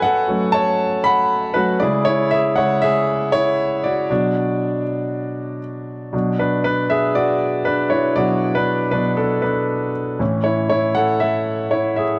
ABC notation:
X:1
M:4/4
L:1/16
Q:"Swing 16ths" 1/4=118
K:Bdor
V:1 name="Grand piano"
[Af]4 [ca]4 [fb]4 [FB]2 [Gd]2 | [Ec]2 [Ge]2 [cf]2 [Ge]4 [Ec]4 [Fd]2- | [Fd]12 z4 | z2 [DB]2 [DB]2 [Ge]2 [Fd]4 [DB]2 [Ec]2 |
[Fd]3 [DB]3 B2 [DA]2 [DB]4 z2 | z2 [Ec]2 [Ec]2 [Af]2 [Ae]4 [Ec]2 [Ge]2 |]
V:2 name="Grand piano" clef=bass
z2 [F,A,C]8- [F,A,C]2 [F,A,C]2 [C,G,E]2 | z4 [C,G,E]2 z8 z2 | [B,,F,D]6 z8 z2 | [B,,F,D]16 |
[B,,F,D]6 [B,,F,D]2 z8 | [A,,E,C]16 |]